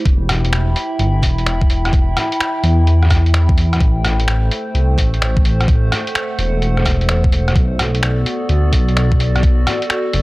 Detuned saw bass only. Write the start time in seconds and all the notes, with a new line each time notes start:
0.05 E1
0.99 G1
1.22 E1
2.63 E2
3.80 A1
4.75 C2
4.98 A1
6.38 E1
7.56 B1
8.49 D2
8.73 B1
10.14 F#1